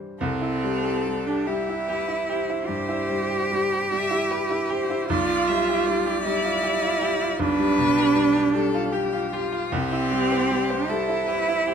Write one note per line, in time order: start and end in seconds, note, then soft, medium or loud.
0.00 0.20 G3 soft
0.00 0.22 G4 soft
0.00 0.22 C5 soft
0.19 2.63 C2 medium
0.19 1.28 C4 loud
0.19 1.48 A4 loud
0.41 0.75 E4 medium
0.64 0.97 G3 medium
0.84 1.18 G4 medium
1.06 1.39 G3 medium
1.27 1.48 D4 loud
1.27 1.60 G4 medium
1.47 1.80 G3 medium
1.47 2.68 E4 loud
1.47 1.89 G4 medium
1.69 2.00 E4 medium
1.88 2.20 G4 medium
1.88 2.29 B4 medium
2.08 2.39 E4 medium
2.27 2.60 G4 medium
2.27 3.90 C5 medium
2.49 2.80 E4 medium
2.66 3.00 G2 medium
2.66 5.09 G4 loud
2.88 3.21 E4 medium
3.09 3.42 G3 medium
3.30 3.62 G4 medium
3.52 3.83 G3 medium
3.72 4.03 G4 medium
3.91 4.22 G3 medium
3.91 4.32 E5 loud
4.10 4.42 E4 medium
4.30 4.61 G4 medium
4.30 4.72 B4 medium
4.50 4.81 E4 medium
4.70 5.01 G4 medium
4.70 5.09 C5 medium
4.90 5.09 E4 medium
5.09 7.35 B1 medium
5.09 6.22 F4 loud
5.09 5.49 D5 loud
5.29 5.60 F4 medium
5.48 5.79 G3 medium
5.48 5.87 E5 medium
5.69 5.98 G4 medium
5.86 6.17 G3 medium
5.86 7.41 D5 loud
6.06 6.36 G4 medium
6.24 6.55 G3 medium
6.24 7.40 E4 loud
6.44 6.74 F4 medium
6.63 6.93 G4 medium
6.82 7.12 F4 medium
7.01 7.31 G4 medium
7.21 7.51 F4 medium
7.39 9.68 B1 medium
7.39 9.33 D4 loud
7.39 8.53 B4 loud
7.59 7.89 G3 medium
7.78 8.08 B2 medium
7.97 8.27 G4 medium
8.16 8.46 G3 medium
8.36 8.66 G4 medium
8.53 8.86 G3 medium
8.53 8.93 A4 loud
8.74 9.05 F4 medium
8.92 9.34 G4 loud
8.92 9.24 G4 medium
9.13 9.44 F4 medium
9.33 9.73 F4 loud
9.33 9.64 G4 medium
9.52 9.72 F4 medium
9.71 11.74 C2 medium
9.71 10.90 C4 loud
9.71 10.91 G4 loud
9.92 10.23 E4 medium
10.11 10.42 G3 medium
10.32 10.62 C5 medium
10.51 10.81 G3 medium
10.70 11.01 C5 medium
10.88 11.20 G3 medium
10.88 11.74 E4 loud
10.88 11.28 A4 medium
11.09 11.39 E4 medium
11.27 11.59 G4 medium
11.27 11.66 B4 medium
11.48 11.74 E4 medium
11.65 11.74 G4 medium
11.65 11.74 C5 medium